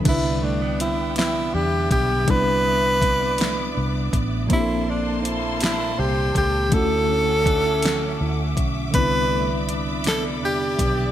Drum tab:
CC |x-----|------|------|------|
HH |x-xx-x|x-xx-x|x-xx-x|x-xx-x|
SD |---o--|---o--|---o--|---o--|
BD |o----o|o-o--o|o----o|o-o--o|

CC |------|
HH |x-xx-x|
SD |---o--|
BD |o----o|